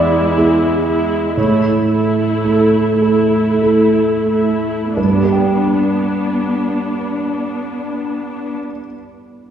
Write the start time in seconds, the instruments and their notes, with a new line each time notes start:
Already playing: grand piano E2 B3 E4 G#4 B4 D5, viola section G#3 E4
0.37 grand piano B3 E4 G#4
0.87 viola section G#3 E4
1.37 grand piano A2 C#5, viola section A3 E4
1.90 viola section A3 E4
2.44 grand piano A3 E4 A4
3.02 viola section A3 E4, grand piano A4
3.62 grand piano A3 E4 A4
4.28 viola section A3 E4
4.97 grand piano G2 B4, viola section B3 D4
5.04 grand piano G3
5.11 grand piano D4
5.18 grand piano G4
5.25 grand piano B4
5.32 grand piano G5